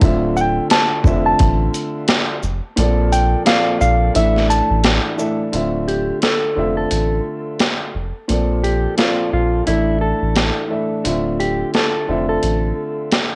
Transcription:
0.01 D1 D3 A3 C4 F4 E5, kick, closed hi-hat
0.36 G5, shaker
0.70 A5, snare, closed hi-hat
1.04 F1 D3 A3 C4 F4 E5, kick, shaker
1.26 A5
1.39 A1, kick, closed hi-hat
1.74 closed hi-hat, shaker
2.08 snare, closed hi-hat
2.43 F1, shaker
2.76 A#1 A#2 F3 C4 A4 D5, closed hi-hat
3.12 G5, closed hi-hat, shaker
3.45 A#2 F3 C4 A4 D5 F5, snare, closed hi-hat
3.81 A#1 F5, shaker
4.14 A1 A2 E3 D4 A4 E5, closed hi-hat
4.36 snare
4.50 A5, closed hi-hat, shaker
4.70 A1
4.84 snare, closed hi-hat
5.16 A2 E3 D4 A4 E5, shaker
5.52 D1 D3 A3 C4 F4 E5, closed hi-hat
5.88 G4, closed hi-hat
6.22 A4, snare, closed hi-hat
6.56 F1 D3 A3 C4 F4 E5
6.77 A4
6.91 A1, closed hi-hat
7.60 snare, closed hi-hat
7.95 F1
8.28 A#1 A#2 F3 C4 A4 D5, closed hi-hat
8.64 G4, closed hi-hat
8.97 A#2 F3 C4 F4 A4 D5, snare, closed hi-hat
9.33 A#1 F4
9.66 A1 A2 E3 D4 E4 A4 E5, closed hi-hat
10.01 A4
10.22 A1
10.36 snare, closed hi-hat
10.68 A2 E3 D4 A4 E5
11.04 D1 D3 A3 C4 F4 E5, closed hi-hat
11.40 G4, closed hi-hat
11.74 A4, snare, closed hi-hat
12.07 F1 D3 A3 C4 F4 E5
12.29 A4
12.43 A1, closed hi-hat
13.11 snare, closed hi-hat

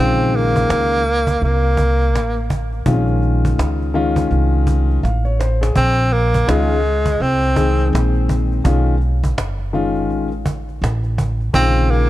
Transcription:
Already playing: A#1 C#3 D#3 G#3
0.00 C4 F4
0.19 cajon slap
0.33 A#3, cajon slap
0.56 cajon bass, cajon slap
0.70 C#2, cajon slap
0.91 cajon slap
1.06 cajon slap
1.27 cajon bass
1.42 C2 A#3, cajon slap
1.63 cajon slap
1.77 cajon bass
2.01 cajon slap
2.14 A1, cajon slap
2.35 cajon slap
2.50 cajon bass
2.73 cajon slap
2.86 A#1 D#3 G#3 C4 F4, cajon bass
2.93 C#4
3.07 cajon slap
3.22 cajon slap
3.45 cajon bass
3.58 C#2, cajon slap
3.80 cajon slap
3.82 cajon slap
3.94 D#3 G#3 C#4 F4, cajon slap
4.16 cajon bass
4.31 C2, cajon slap
4.53 cajon slap
4.67 cajon bass
4.90 cajon slap
5.03 A1 F5, cajon slap
5.25 C#5, cajon slap
5.39 C5, cajon slap
5.61 G#4, cajon slap
5.76 A#1 C4, cajon bass
6.12 A#3, cajon slap
6.34 cajon bass, cajon slap
6.47 C#2 D#3 G#3 C#4 F4, cajon slap
6.69 cajon slap
6.85 cajon slap
7.06 cajon bass
7.20 C2 C4, cajon slap
7.56 D#3 G#3 C4 G#4, cajon bass
7.80 cajon slap
7.93 A#1, cajon slap
8.14 cajon slap
8.29 cajon bass
8.52 cajon slap
8.64 B1 D#3 G#3 C#4 F4, cajon bass
8.87 cajon slap
9.01 cajon slap
9.24 cajon bass
9.37 F#1, cajon slap
9.59 cajon slap
9.73 D#3 G#3 C#4 F4, cajon slap
9.96 cajon slap
10.09 A1, cajon slap
10.31 cajon slap
10.46 cajon bass
10.69 cajon slap
10.82 A1, cajon slap
11.04 cajon slap
11.18 cajon bass
11.41 cajon slap
11.53 A#1 D#3 G#3 C4 F4, cajon bass
11.61 C#3
11.90 A#3, cajon slap

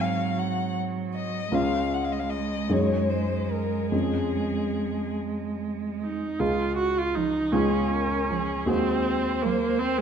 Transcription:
Already playing: G#2 F#3 C4 D#4 F#4
0.01 F5
0.39 F#5
1.15 D#5
1.52 C#2 G#3 C#4 F4 F5
1.93 F#5
2.04 F5
2.12 D#5
2.20 F5
2.30 D#5
2.69 F#2 G#3 D#4 G#4 C#5
3.09 C5
3.51 A#4
3.92 F2 G#3 C#4 G#4
6.01 D#4
6.39 C#2 G#3 F4 G#4
6.77 F#4
6.98 F4
7.15 F3 D#4
7.52 C#2 G#3 C#4 F4 G#4
7.93 A#4
8.30 F3 G#4
8.66 D#2 G#3 C4 F#4 G#4 C5
9.42 F#3 A#3
9.79 C4
9.98 G#3

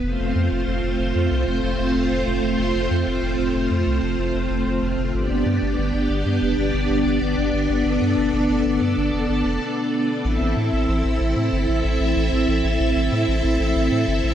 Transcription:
0.03 F1 A3 C4 F4 C5
0.20 F1
0.35 F2
0.51 F1
0.67 F1
0.83 F1
0.99 F1
1.15 F2
1.31 C2
1.47 F1
1.63 F1
1.79 F1
1.95 F1
2.11 F1
2.27 F1
2.43 F1
2.59 F1
2.75 F1
2.91 F2
3.07 F1
3.23 F1
3.39 F1
3.55 F1
3.71 F2
3.87 C2
4.03 F1
4.18 F1
4.34 F1
4.50 F1
4.66 F1
4.82 F1
4.98 F1
5.14 G1 B3 D4 G4 D5
5.30 G1
5.46 G2
5.62 G1
5.78 G1
5.94 G1
6.10 G1
6.26 G2
6.42 F1
6.58 G1
6.74 G1
6.90 G1
7.06 G1
7.22 G1
7.38 G1
7.54 G1
7.70 G1 A4
7.86 G1
8.02 G2
8.18 G1
8.34 G1
8.50 G1
8.66 G1
8.82 G2
8.98 G1
9.13 F1
9.29 G1
9.45 F1
10.25 A1 C4 E4 A4 E5
10.41 A1
10.57 A2
10.73 A1
10.89 A1
11.05 A1
11.21 A1
11.37 A2
11.53 G1
11.69 A1
11.85 A1
12.01 A1
12.17 A1
12.32 A1
12.48 A1
12.64 A1
12.80 A1
12.96 A1
13.12 A2
13.28 A1
13.44 A1
13.60 A1
13.76 A1
13.92 A2
14.08 G1
14.24 A1

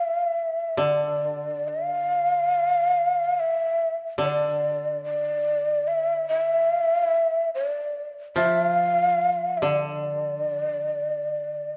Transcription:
Already playing: E5
0.77 D3 D5
1.68 F5
3.40 E5
4.18 D3
4.23 D5
5.04 D5
5.88 E5
6.28 E5
7.55 D5
8.36 F3 E5
8.64 F5
9.57 E5
9.62 D3 D5

